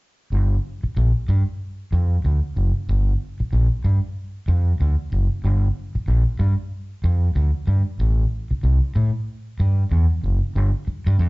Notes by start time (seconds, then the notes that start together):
0.32 G1
0.84 muted fingered electric bass stroke
0.97 A#1
1.29 G2
1.93 F2
2.25 D2
2.56 F#1
2.89 G1
3.40 muted fingered electric bass stroke
3.53 A#1
3.84 G2
4.48 F2
4.80 D2
5.12 F#1
5.44 G1
5.95 muted fingered electric bass stroke
6.08 A#1
6.39 G2
7.04 F2
7.36 D2
7.67 G2
8.00 A1
8.51 muted fingered electric bass stroke
8.63 C2
8.95 A2
9.60 G2
9.91 E2
10.24 F#1
10.56 G1
10.88 muted fingered electric bass stroke
11.07 G2
11.19 F2